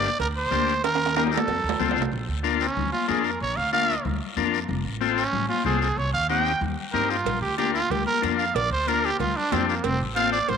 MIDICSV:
0, 0, Header, 1, 5, 480
1, 0, Start_track
1, 0, Key_signature, -2, "major"
1, 0, Tempo, 321716
1, 1249, Time_signature, 4, 2, 24, 8
1, 15775, End_track
2, 0, Start_track
2, 0, Title_t, "Trumpet"
2, 0, Program_c, 0, 56
2, 0, Note_on_c, 0, 74, 103
2, 264, Note_off_c, 0, 74, 0
2, 304, Note_on_c, 0, 70, 89
2, 409, Note_off_c, 0, 70, 0
2, 543, Note_on_c, 0, 72, 101
2, 1206, Note_off_c, 0, 72, 0
2, 1251, Note_on_c, 0, 70, 99
2, 1696, Note_off_c, 0, 70, 0
2, 1739, Note_on_c, 0, 70, 87
2, 1844, Note_off_c, 0, 70, 0
2, 1981, Note_on_c, 0, 69, 88
2, 2874, Note_off_c, 0, 69, 0
2, 3891, Note_on_c, 0, 61, 92
2, 4344, Note_off_c, 0, 61, 0
2, 4353, Note_on_c, 0, 65, 87
2, 4592, Note_off_c, 0, 65, 0
2, 4610, Note_on_c, 0, 68, 85
2, 4842, Note_on_c, 0, 70, 77
2, 4865, Note_off_c, 0, 68, 0
2, 5077, Note_off_c, 0, 70, 0
2, 5099, Note_on_c, 0, 73, 91
2, 5317, Note_on_c, 0, 77, 85
2, 5340, Note_off_c, 0, 73, 0
2, 5554, Note_off_c, 0, 77, 0
2, 5564, Note_on_c, 0, 77, 95
2, 6030, Note_off_c, 0, 77, 0
2, 7712, Note_on_c, 0, 61, 97
2, 8178, Note_off_c, 0, 61, 0
2, 8187, Note_on_c, 0, 65, 87
2, 8424, Note_off_c, 0, 65, 0
2, 8433, Note_on_c, 0, 68, 85
2, 8662, Note_off_c, 0, 68, 0
2, 8670, Note_on_c, 0, 68, 84
2, 8920, Note_on_c, 0, 73, 92
2, 8943, Note_off_c, 0, 68, 0
2, 9148, Note_off_c, 0, 73, 0
2, 9157, Note_on_c, 0, 77, 86
2, 9387, Note_off_c, 0, 77, 0
2, 9396, Note_on_c, 0, 79, 96
2, 9865, Note_off_c, 0, 79, 0
2, 10337, Note_on_c, 0, 70, 90
2, 10591, Note_on_c, 0, 65, 78
2, 10614, Note_off_c, 0, 70, 0
2, 11051, Note_off_c, 0, 65, 0
2, 11060, Note_on_c, 0, 67, 84
2, 11298, Note_off_c, 0, 67, 0
2, 11307, Note_on_c, 0, 67, 90
2, 11540, Note_off_c, 0, 67, 0
2, 11549, Note_on_c, 0, 65, 100
2, 11798, Note_on_c, 0, 67, 88
2, 11820, Note_off_c, 0, 65, 0
2, 12021, Note_off_c, 0, 67, 0
2, 12030, Note_on_c, 0, 70, 98
2, 12269, Note_off_c, 0, 70, 0
2, 12502, Note_on_c, 0, 77, 82
2, 12756, Note_on_c, 0, 74, 95
2, 12779, Note_off_c, 0, 77, 0
2, 12993, Note_off_c, 0, 74, 0
2, 13004, Note_on_c, 0, 72, 84
2, 13242, Note_on_c, 0, 70, 90
2, 13264, Note_off_c, 0, 72, 0
2, 13504, Note_on_c, 0, 67, 94
2, 13527, Note_off_c, 0, 70, 0
2, 13713, Note_off_c, 0, 67, 0
2, 13722, Note_on_c, 0, 65, 85
2, 13972, Note_on_c, 0, 62, 92
2, 13994, Note_off_c, 0, 65, 0
2, 14208, Note_on_c, 0, 60, 84
2, 14231, Note_off_c, 0, 62, 0
2, 14440, Note_off_c, 0, 60, 0
2, 14446, Note_on_c, 0, 58, 84
2, 14672, Note_on_c, 0, 60, 107
2, 14694, Note_off_c, 0, 58, 0
2, 14912, Note_off_c, 0, 60, 0
2, 15152, Note_on_c, 0, 77, 105
2, 15392, Note_off_c, 0, 77, 0
2, 15401, Note_on_c, 0, 74, 93
2, 15647, Note_on_c, 0, 72, 94
2, 15670, Note_off_c, 0, 74, 0
2, 15775, Note_off_c, 0, 72, 0
2, 15775, End_track
3, 0, Start_track
3, 0, Title_t, "Transistor combo organ"
3, 0, Program_c, 1, 18
3, 762, Note_on_c, 1, 58, 68
3, 770, Note_on_c, 1, 62, 69
3, 779, Note_on_c, 1, 67, 74
3, 1102, Note_off_c, 1, 58, 0
3, 1106, Note_off_c, 1, 62, 0
3, 1110, Note_off_c, 1, 67, 0
3, 1727, Note_on_c, 1, 58, 71
3, 1732, Note_on_c, 1, 63, 65
3, 1741, Note_on_c, 1, 67, 76
3, 2064, Note_off_c, 1, 58, 0
3, 2066, Note_off_c, 1, 63, 0
3, 2071, Note_off_c, 1, 67, 0
3, 2676, Note_on_c, 1, 60, 85
3, 2685, Note_on_c, 1, 65, 82
3, 2696, Note_on_c, 1, 69, 91
3, 3018, Note_off_c, 1, 60, 0
3, 3022, Note_off_c, 1, 65, 0
3, 3028, Note_off_c, 1, 69, 0
3, 3629, Note_on_c, 1, 62, 84
3, 3638, Note_on_c, 1, 65, 79
3, 3640, Note_on_c, 1, 70, 90
3, 3974, Note_off_c, 1, 62, 0
3, 3978, Note_off_c, 1, 65, 0
3, 3979, Note_off_c, 1, 70, 0
3, 4593, Note_on_c, 1, 62, 76
3, 4598, Note_on_c, 1, 65, 63
3, 4598, Note_on_c, 1, 70, 81
3, 4936, Note_off_c, 1, 62, 0
3, 4938, Note_off_c, 1, 65, 0
3, 4938, Note_off_c, 1, 70, 0
3, 5560, Note_on_c, 1, 62, 69
3, 5562, Note_on_c, 1, 65, 65
3, 5568, Note_on_c, 1, 70, 74
3, 5899, Note_off_c, 1, 62, 0
3, 5900, Note_off_c, 1, 65, 0
3, 5903, Note_off_c, 1, 70, 0
3, 6515, Note_on_c, 1, 62, 85
3, 6521, Note_on_c, 1, 65, 83
3, 6525, Note_on_c, 1, 70, 90
3, 6856, Note_off_c, 1, 62, 0
3, 6859, Note_off_c, 1, 65, 0
3, 6861, Note_off_c, 1, 70, 0
3, 7471, Note_on_c, 1, 60, 84
3, 7476, Note_on_c, 1, 65, 75
3, 7482, Note_on_c, 1, 69, 101
3, 7814, Note_off_c, 1, 60, 0
3, 7816, Note_off_c, 1, 65, 0
3, 7819, Note_off_c, 1, 69, 0
3, 8429, Note_on_c, 1, 60, 74
3, 8438, Note_on_c, 1, 65, 70
3, 8443, Note_on_c, 1, 69, 76
3, 8772, Note_off_c, 1, 60, 0
3, 8777, Note_off_c, 1, 65, 0
3, 8780, Note_off_c, 1, 69, 0
3, 9390, Note_on_c, 1, 60, 72
3, 9390, Note_on_c, 1, 63, 67
3, 9403, Note_on_c, 1, 67, 76
3, 9733, Note_off_c, 1, 60, 0
3, 9733, Note_off_c, 1, 63, 0
3, 9739, Note_off_c, 1, 67, 0
3, 10347, Note_on_c, 1, 60, 67
3, 10352, Note_on_c, 1, 63, 63
3, 10354, Note_on_c, 1, 67, 79
3, 10691, Note_off_c, 1, 60, 0
3, 10694, Note_off_c, 1, 63, 0
3, 10695, Note_off_c, 1, 67, 0
3, 11305, Note_on_c, 1, 62, 68
3, 11312, Note_on_c, 1, 65, 62
3, 11317, Note_on_c, 1, 70, 75
3, 11650, Note_off_c, 1, 62, 0
3, 11654, Note_off_c, 1, 65, 0
3, 11657, Note_off_c, 1, 70, 0
3, 12256, Note_on_c, 1, 62, 76
3, 12266, Note_on_c, 1, 65, 69
3, 12278, Note_on_c, 1, 70, 79
3, 12606, Note_off_c, 1, 62, 0
3, 12611, Note_off_c, 1, 65, 0
3, 12617, Note_off_c, 1, 70, 0
3, 13248, Note_on_c, 1, 62, 74
3, 13248, Note_on_c, 1, 65, 66
3, 13253, Note_on_c, 1, 70, 77
3, 13582, Note_off_c, 1, 62, 0
3, 13582, Note_off_c, 1, 65, 0
3, 13585, Note_off_c, 1, 70, 0
3, 14211, Note_on_c, 1, 62, 73
3, 14216, Note_on_c, 1, 65, 72
3, 14217, Note_on_c, 1, 67, 81
3, 14544, Note_off_c, 1, 62, 0
3, 14547, Note_off_c, 1, 65, 0
3, 14547, Note_off_c, 1, 67, 0
3, 15156, Note_on_c, 1, 60, 72
3, 15160, Note_on_c, 1, 65, 70
3, 15166, Note_on_c, 1, 69, 81
3, 15498, Note_off_c, 1, 60, 0
3, 15500, Note_off_c, 1, 65, 0
3, 15503, Note_off_c, 1, 69, 0
3, 15775, End_track
4, 0, Start_track
4, 0, Title_t, "Upright bass"
4, 0, Program_c, 2, 32
4, 288, Note_on_c, 2, 38, 93
4, 673, Note_off_c, 2, 38, 0
4, 764, Note_on_c, 2, 38, 90
4, 1245, Note_off_c, 2, 38, 0
4, 1245, Note_on_c, 2, 39, 105
4, 2014, Note_off_c, 2, 39, 0
4, 2201, Note_on_c, 2, 41, 96
4, 2396, Note_off_c, 2, 41, 0
4, 2440, Note_on_c, 2, 39, 91
4, 2660, Note_off_c, 2, 39, 0
4, 2682, Note_on_c, 2, 38, 85
4, 2900, Note_off_c, 2, 38, 0
4, 2919, Note_on_c, 2, 36, 76
4, 3139, Note_off_c, 2, 36, 0
4, 3166, Note_on_c, 2, 34, 88
4, 3358, Note_off_c, 2, 34, 0
4, 3406, Note_on_c, 2, 38, 85
4, 3982, Note_off_c, 2, 38, 0
4, 4124, Note_on_c, 2, 38, 91
4, 4317, Note_off_c, 2, 38, 0
4, 4607, Note_on_c, 2, 41, 94
4, 4991, Note_off_c, 2, 41, 0
4, 5085, Note_on_c, 2, 34, 85
4, 5277, Note_off_c, 2, 34, 0
4, 5326, Note_on_c, 2, 38, 81
4, 5902, Note_off_c, 2, 38, 0
4, 6041, Note_on_c, 2, 38, 93
4, 6235, Note_off_c, 2, 38, 0
4, 6513, Note_on_c, 2, 41, 99
4, 6902, Note_off_c, 2, 41, 0
4, 6993, Note_on_c, 2, 29, 94
4, 7189, Note_off_c, 2, 29, 0
4, 7233, Note_on_c, 2, 33, 85
4, 7813, Note_off_c, 2, 33, 0
4, 7946, Note_on_c, 2, 33, 90
4, 8145, Note_off_c, 2, 33, 0
4, 8423, Note_on_c, 2, 36, 100
4, 8815, Note_off_c, 2, 36, 0
4, 8910, Note_on_c, 2, 36, 86
4, 9107, Note_off_c, 2, 36, 0
4, 9160, Note_on_c, 2, 39, 89
4, 9737, Note_off_c, 2, 39, 0
4, 9862, Note_on_c, 2, 39, 102
4, 10063, Note_off_c, 2, 39, 0
4, 10350, Note_on_c, 2, 43, 91
4, 10740, Note_off_c, 2, 43, 0
4, 10821, Note_on_c, 2, 34, 85
4, 11022, Note_off_c, 2, 34, 0
4, 11054, Note_on_c, 2, 38, 83
4, 11642, Note_off_c, 2, 38, 0
4, 11789, Note_on_c, 2, 38, 94
4, 11987, Note_off_c, 2, 38, 0
4, 12283, Note_on_c, 2, 41, 91
4, 12667, Note_off_c, 2, 41, 0
4, 12755, Note_on_c, 2, 34, 98
4, 12951, Note_off_c, 2, 34, 0
4, 12983, Note_on_c, 2, 38, 86
4, 13568, Note_off_c, 2, 38, 0
4, 13716, Note_on_c, 2, 38, 103
4, 13912, Note_off_c, 2, 38, 0
4, 14212, Note_on_c, 2, 41, 95
4, 14593, Note_off_c, 2, 41, 0
4, 14688, Note_on_c, 2, 29, 100
4, 14879, Note_off_c, 2, 29, 0
4, 14921, Note_on_c, 2, 33, 92
4, 15499, Note_off_c, 2, 33, 0
4, 15646, Note_on_c, 2, 33, 95
4, 15775, Note_off_c, 2, 33, 0
4, 15775, End_track
5, 0, Start_track
5, 0, Title_t, "Drums"
5, 43, Note_on_c, 9, 73, 77
5, 192, Note_off_c, 9, 73, 0
5, 280, Note_on_c, 9, 74, 71
5, 296, Note_on_c, 9, 56, 81
5, 429, Note_off_c, 9, 74, 0
5, 445, Note_off_c, 9, 56, 0
5, 758, Note_on_c, 9, 63, 86
5, 767, Note_on_c, 9, 73, 69
5, 908, Note_off_c, 9, 63, 0
5, 916, Note_off_c, 9, 73, 0
5, 1005, Note_on_c, 9, 73, 63
5, 1155, Note_off_c, 9, 73, 0
5, 1247, Note_on_c, 9, 74, 75
5, 1255, Note_on_c, 9, 56, 111
5, 1255, Note_on_c, 9, 65, 71
5, 1396, Note_off_c, 9, 74, 0
5, 1405, Note_off_c, 9, 56, 0
5, 1405, Note_off_c, 9, 65, 0
5, 1419, Note_on_c, 9, 65, 84
5, 1569, Note_off_c, 9, 65, 0
5, 1578, Note_on_c, 9, 65, 85
5, 1723, Note_on_c, 9, 63, 77
5, 1723, Note_on_c, 9, 73, 69
5, 1727, Note_off_c, 9, 65, 0
5, 1738, Note_on_c, 9, 65, 91
5, 1872, Note_off_c, 9, 63, 0
5, 1872, Note_off_c, 9, 73, 0
5, 1887, Note_off_c, 9, 65, 0
5, 1894, Note_on_c, 9, 66, 69
5, 1961, Note_on_c, 9, 63, 72
5, 1968, Note_on_c, 9, 73, 70
5, 2044, Note_off_c, 9, 66, 0
5, 2051, Note_on_c, 9, 66, 97
5, 2110, Note_off_c, 9, 63, 0
5, 2118, Note_off_c, 9, 73, 0
5, 2201, Note_off_c, 9, 66, 0
5, 2203, Note_on_c, 9, 74, 68
5, 2209, Note_on_c, 9, 56, 82
5, 2209, Note_on_c, 9, 66, 76
5, 2352, Note_off_c, 9, 74, 0
5, 2358, Note_off_c, 9, 56, 0
5, 2358, Note_off_c, 9, 66, 0
5, 2523, Note_on_c, 9, 66, 83
5, 2672, Note_off_c, 9, 66, 0
5, 2680, Note_on_c, 9, 73, 67
5, 2685, Note_on_c, 9, 63, 84
5, 2685, Note_on_c, 9, 64, 86
5, 2829, Note_off_c, 9, 73, 0
5, 2835, Note_off_c, 9, 63, 0
5, 2835, Note_off_c, 9, 64, 0
5, 2849, Note_on_c, 9, 66, 86
5, 2925, Note_on_c, 9, 73, 59
5, 2998, Note_off_c, 9, 66, 0
5, 3012, Note_on_c, 9, 66, 77
5, 3074, Note_off_c, 9, 73, 0
5, 3158, Note_on_c, 9, 74, 69
5, 3161, Note_off_c, 9, 66, 0
5, 3307, Note_off_c, 9, 74, 0
5, 3644, Note_on_c, 9, 73, 73
5, 3651, Note_on_c, 9, 63, 75
5, 3793, Note_off_c, 9, 73, 0
5, 3800, Note_off_c, 9, 63, 0
5, 3883, Note_on_c, 9, 73, 71
5, 4032, Note_off_c, 9, 73, 0
5, 4131, Note_on_c, 9, 74, 69
5, 4132, Note_on_c, 9, 64, 87
5, 4280, Note_off_c, 9, 74, 0
5, 4281, Note_off_c, 9, 64, 0
5, 4371, Note_on_c, 9, 63, 64
5, 4520, Note_off_c, 9, 63, 0
5, 4603, Note_on_c, 9, 63, 80
5, 4603, Note_on_c, 9, 73, 66
5, 4752, Note_off_c, 9, 73, 0
5, 4753, Note_off_c, 9, 63, 0
5, 4840, Note_on_c, 9, 73, 68
5, 4989, Note_off_c, 9, 73, 0
5, 5080, Note_on_c, 9, 74, 73
5, 5229, Note_off_c, 9, 74, 0
5, 5563, Note_on_c, 9, 73, 68
5, 5568, Note_on_c, 9, 63, 75
5, 5713, Note_off_c, 9, 73, 0
5, 5718, Note_off_c, 9, 63, 0
5, 5811, Note_on_c, 9, 73, 73
5, 5961, Note_off_c, 9, 73, 0
5, 6042, Note_on_c, 9, 64, 76
5, 6043, Note_on_c, 9, 74, 66
5, 6191, Note_off_c, 9, 64, 0
5, 6192, Note_off_c, 9, 74, 0
5, 6514, Note_on_c, 9, 63, 80
5, 6520, Note_on_c, 9, 73, 71
5, 6664, Note_off_c, 9, 63, 0
5, 6670, Note_off_c, 9, 73, 0
5, 6772, Note_on_c, 9, 73, 68
5, 6921, Note_off_c, 9, 73, 0
5, 6987, Note_on_c, 9, 64, 81
5, 7000, Note_on_c, 9, 74, 72
5, 7136, Note_off_c, 9, 64, 0
5, 7149, Note_off_c, 9, 74, 0
5, 7472, Note_on_c, 9, 63, 70
5, 7481, Note_on_c, 9, 73, 77
5, 7621, Note_off_c, 9, 63, 0
5, 7630, Note_off_c, 9, 73, 0
5, 7728, Note_on_c, 9, 73, 73
5, 7877, Note_off_c, 9, 73, 0
5, 7954, Note_on_c, 9, 64, 81
5, 7962, Note_on_c, 9, 74, 69
5, 8103, Note_off_c, 9, 64, 0
5, 8111, Note_off_c, 9, 74, 0
5, 8192, Note_on_c, 9, 63, 72
5, 8341, Note_off_c, 9, 63, 0
5, 8428, Note_on_c, 9, 63, 86
5, 8428, Note_on_c, 9, 64, 75
5, 8445, Note_on_c, 9, 73, 66
5, 8578, Note_off_c, 9, 63, 0
5, 8578, Note_off_c, 9, 64, 0
5, 8594, Note_off_c, 9, 73, 0
5, 8680, Note_on_c, 9, 73, 72
5, 8830, Note_off_c, 9, 73, 0
5, 8921, Note_on_c, 9, 74, 65
5, 9070, Note_off_c, 9, 74, 0
5, 9394, Note_on_c, 9, 73, 74
5, 9395, Note_on_c, 9, 63, 77
5, 9543, Note_off_c, 9, 73, 0
5, 9544, Note_off_c, 9, 63, 0
5, 9634, Note_on_c, 9, 73, 69
5, 9783, Note_off_c, 9, 73, 0
5, 9870, Note_on_c, 9, 64, 79
5, 9877, Note_on_c, 9, 74, 76
5, 10019, Note_off_c, 9, 64, 0
5, 10026, Note_off_c, 9, 74, 0
5, 10351, Note_on_c, 9, 63, 82
5, 10351, Note_on_c, 9, 64, 68
5, 10363, Note_on_c, 9, 73, 62
5, 10501, Note_off_c, 9, 63, 0
5, 10501, Note_off_c, 9, 64, 0
5, 10512, Note_off_c, 9, 73, 0
5, 10601, Note_on_c, 9, 73, 67
5, 10750, Note_off_c, 9, 73, 0
5, 10828, Note_on_c, 9, 64, 80
5, 10831, Note_on_c, 9, 74, 73
5, 10839, Note_on_c, 9, 56, 115
5, 10977, Note_off_c, 9, 64, 0
5, 10980, Note_off_c, 9, 74, 0
5, 10988, Note_off_c, 9, 56, 0
5, 11313, Note_on_c, 9, 56, 63
5, 11317, Note_on_c, 9, 63, 77
5, 11323, Note_on_c, 9, 73, 70
5, 11462, Note_off_c, 9, 56, 0
5, 11467, Note_off_c, 9, 63, 0
5, 11472, Note_off_c, 9, 73, 0
5, 11563, Note_on_c, 9, 73, 70
5, 11712, Note_off_c, 9, 73, 0
5, 11793, Note_on_c, 9, 64, 85
5, 11806, Note_on_c, 9, 74, 72
5, 11808, Note_on_c, 9, 56, 87
5, 11942, Note_off_c, 9, 64, 0
5, 11956, Note_off_c, 9, 74, 0
5, 11957, Note_off_c, 9, 56, 0
5, 12029, Note_on_c, 9, 63, 66
5, 12179, Note_off_c, 9, 63, 0
5, 12270, Note_on_c, 9, 63, 80
5, 12285, Note_on_c, 9, 56, 72
5, 12296, Note_on_c, 9, 73, 68
5, 12420, Note_off_c, 9, 63, 0
5, 12434, Note_off_c, 9, 56, 0
5, 12445, Note_off_c, 9, 73, 0
5, 12521, Note_on_c, 9, 73, 68
5, 12671, Note_off_c, 9, 73, 0
5, 12768, Note_on_c, 9, 56, 114
5, 12770, Note_on_c, 9, 74, 72
5, 12918, Note_off_c, 9, 56, 0
5, 12919, Note_off_c, 9, 74, 0
5, 13231, Note_on_c, 9, 63, 77
5, 13247, Note_on_c, 9, 73, 74
5, 13253, Note_on_c, 9, 56, 67
5, 13380, Note_off_c, 9, 63, 0
5, 13397, Note_off_c, 9, 73, 0
5, 13402, Note_off_c, 9, 56, 0
5, 13487, Note_on_c, 9, 73, 73
5, 13636, Note_off_c, 9, 73, 0
5, 13723, Note_on_c, 9, 64, 82
5, 13731, Note_on_c, 9, 56, 78
5, 13733, Note_on_c, 9, 74, 74
5, 13872, Note_off_c, 9, 64, 0
5, 13880, Note_off_c, 9, 56, 0
5, 13882, Note_off_c, 9, 74, 0
5, 14201, Note_on_c, 9, 63, 90
5, 14201, Note_on_c, 9, 64, 75
5, 14208, Note_on_c, 9, 56, 77
5, 14208, Note_on_c, 9, 66, 84
5, 14211, Note_on_c, 9, 73, 66
5, 14350, Note_off_c, 9, 63, 0
5, 14350, Note_off_c, 9, 64, 0
5, 14358, Note_off_c, 9, 56, 0
5, 14358, Note_off_c, 9, 66, 0
5, 14360, Note_off_c, 9, 73, 0
5, 14461, Note_on_c, 9, 73, 69
5, 14610, Note_off_c, 9, 73, 0
5, 14681, Note_on_c, 9, 56, 111
5, 14687, Note_on_c, 9, 64, 77
5, 14691, Note_on_c, 9, 74, 71
5, 14830, Note_off_c, 9, 56, 0
5, 14836, Note_off_c, 9, 64, 0
5, 14840, Note_off_c, 9, 74, 0
5, 15163, Note_on_c, 9, 56, 70
5, 15168, Note_on_c, 9, 63, 85
5, 15175, Note_on_c, 9, 73, 77
5, 15312, Note_off_c, 9, 56, 0
5, 15317, Note_off_c, 9, 63, 0
5, 15324, Note_off_c, 9, 73, 0
5, 15411, Note_on_c, 9, 73, 75
5, 15561, Note_off_c, 9, 73, 0
5, 15642, Note_on_c, 9, 64, 85
5, 15645, Note_on_c, 9, 56, 88
5, 15648, Note_on_c, 9, 74, 69
5, 15775, Note_off_c, 9, 56, 0
5, 15775, Note_off_c, 9, 64, 0
5, 15775, Note_off_c, 9, 74, 0
5, 15775, End_track
0, 0, End_of_file